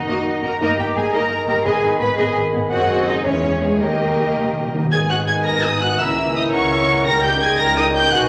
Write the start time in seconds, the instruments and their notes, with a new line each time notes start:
Already playing: harp F#2 F#3 A#3 A#4, bassoon D#3, french horn section D#3 A#3, cello section D#4, violin section D#5, clarinet F#5, flute A#5
0.08 double bass section F#1, viola section A#3 F#4, violin section D#5
0.26 harp F#3
0.43 double bass section F#1, viola section A#3, harp D#4, violin section F#4 A#5, cello section A#4
0.60 double bass section G1, harp G2, bassoon D#3, viola section A#3 D#4, cello section A#4, clarinet D#5, violin section D#5 A#5, flute A#5
0.79 double bass section G1, harp A#3, viola section A#3, cello section G4, violin section A#4 G5
0.96 double bass section G1, french horn section D#3 A#3, harp G3, viola section G3 A#3, violin section G4 G#5, cello section G#4
1.13 double bass section G1, viola section A#3 D#4, harp D#4, cello section A#4, violin section D#5 A#5
1.31 harp G3
1.48 double bass section G1, french horn section D#3 A#3, viola section G3 A#3, harp D#4, violin section G4 A#5, cello section A#4
1.65 double bass section G#1, timpani G#2, harp G#2, viola section B3 G#4, cello section G#4, violin section D#5 G#5, flute B5
1.83 double bass section G#1, viola section B3 D#4, harp B3, violin section B4
2.00 double bass section G#1, french horn section D#3 B3, harp D#3, viola section B3, violin section G#4 B5, cello section B4
2.17 double bass section G#1, viola section B3 G#4, harp D#4, cello section G#4, violin section D#5 G#5
2.36 harp D#3
2.53 double bass section G#1, french horn section D#3 B3, viola section B3, harp D#4, violin section G#4
2.70 double bass section F#1, harp F#2, bassoon D#3, viola section C4 G#4, cello section F#4, clarinet C5, violin section D#5 F#5, flute G#5
2.90 harp G#3
3.07 french horn section G#3 C4, cello section D#4, harp D#4 C5, violin section D#5
3.25 double bass section E2, bassoon E3, harp E3, viola section G#3 G#4, cello section C#4, clarinet C#5, violin section C#5
3.44 harp C#4
3.62 french horn section G#3 C#4, cello section G#3, harp C#4 G#4, violin section G#4
3.81 double bass section D#2, harp D#3, timpani D#3, bassoon D#3, cello section A#3, viola section A#3 G4, violin section A#4 D#5, clarinet D#5, flute G5
3.89 timpani D#3
3.97 timpani D#3, harp D#4
4.05 timpani D#3
4.13 timpani D#3
4.18 timpani D#3, french horn section G3 D#4, harp A#3
4.28 timpani D#3
4.36 timpani D#3, harp G4
4.44 timpani D#3
4.52 timpani D#3, harp A#3
4.59 timpani D#3
4.67 timpani D#3
4.74 timpani D#3, french horn section G3 D#4, harp G4
4.82 timpani D#3
4.91 double bass section G#1, cello section G#2, harp G#2, bassoon D#3, french horn section B3 D#4, viola section G#4, clarinet B4, violin section G#5 G#6, flute G#5
5.01 harp D#3
5.10 harp B3, viola section F#4, violin section F#5 F#6
5.19 harp D#4
5.27 harp G#4, viola section G#4, violin section G#5 G#6
5.37 harp B4
5.45 double bass section G#1, cello section G#2, viola section A#4, harp D#5, cor anglais D#5, violin section A#5 A#6
5.55 harp G#5
5.63 viola section D#4, harp D#5, violin section D#5 D#6
5.74 harp B4
5.81 viola section F#4, harp G#4, violin section F#5 F#6
5.91 harp D#4
5.99 double bass section C#2, cello section C#3, harp C#3, bassoon E3, french horn section A#3 E4, viola section E4, clarinet A#4, violin section E5 E6, cor anglais E5, flute A#5
6.09 harp C#4
6.18 harp A#3
6.27 harp E4
6.35 viola section D#4, harp A#4, violin section D#5 D#6
6.44 harp E4
6.53 double bass section C#2, cello section C#3, viola section C#4, violin section C#5 C#6, harp E5, cor anglais F#5
6.62 harp A#5
6.71 harp E5, cor anglais E5
6.80 harp A#4
6.88 harp E4, cor anglais F#5
6.98 harp A#3
7.06 double bass section C#2, harp C#3, cello section C#3, bassoon D#3, french horn section G3 D#4, viola section A#4, cor anglais G5, flute G5, violin section A#5 A#6
7.15 harp G3
7.23 harp A#3, viola section G4, violin section G5 G6
7.33 harp D#4
7.41 harp G4, viola section G#4, violin section G#5 G#6
7.50 harp A#4
7.59 double bass section C#2, cello section C#3, viola section A#4, harp D#5, violin section A#5 A#6
7.68 harp G5
7.76 viola section D#4, violin section D#5 D#6, harp D#5
7.86 harp A#4
7.94 harp G4, viola section G4, violin section G5 G6
8.03 harp D#4
8.11 double bass section B1, harp B2, cello section B2, french horn section G#3, viola section F#4, clarinet B4, violin section F#5 F#6, flute G#5, cor anglais G#5
8.20 harp B3